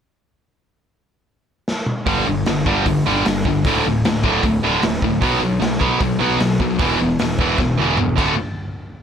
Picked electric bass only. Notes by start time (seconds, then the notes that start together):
2.06 G1
2.27 G1
2.47 G1
2.66 G1
2.85 G1
3.07 G1
3.27 G1
3.45 G1
3.65 D1
3.86 D1
4.05 D1
4.24 D1
4.44 D1
4.62 D1
4.83 D1
5.02 D1
5.22 B1
5.42 B1
5.60 B1
5.81 B1
6.00 B1
6.20 B1
6.40 B1
6.60 B1
6.79 E1
7.01 E1
7.20 E1
7.39 E1
7.58 E1
7.79 E1
7.98 E1
8.18 D1